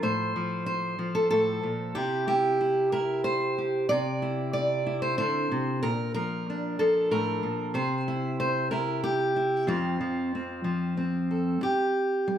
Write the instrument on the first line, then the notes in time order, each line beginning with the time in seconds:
steel-string acoustic guitar
Already playing: F3
0.03 A2 C5
0.36 F3
0.66 C5
0.99 F3
1.15 A4
1.31 A2 A4
1.63 A#2
1.95 C3 E4 G4
2.27 E4 G4
2.61 E4
2.92 E4 A#4
3.24 C5
3.58 G4
3.89 C3 D5
4.22 E4
4.53 D5
4.86 E4
5.02 C5
5.18 D3 C5
5.51 C3
5.83 A#2 A#4
6.14 F3 A#4
6.50 D4
6.79 F3 A4
7.11 A2 A#4
7.43 A#2
7.74 C3 C5
8.08 E4
8.40 C5
8.71 E4 A#4
9.04 G4
9.36 E4
9.67 F2 F3 C4 F4
10.01 F3
10.35 C4
10.64 F3
10.97 C4
11.31 A4
11.61 G2 G4
12.28 G3